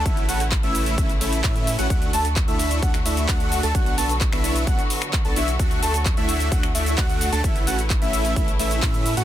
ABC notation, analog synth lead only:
X:1
M:4/4
L:1/16
Q:1/4=130
K:D
V:1 name="Analog synth lead"
e2 f z2 e3 e z e2 e3 f | z2 a z2 e3 f z e2 f3 a | f2 a z2 e3 f z4 a e z | f2 a z2 e3 f z e2 f3 a |
e2 f z2 e3 e z e2 e3 f |]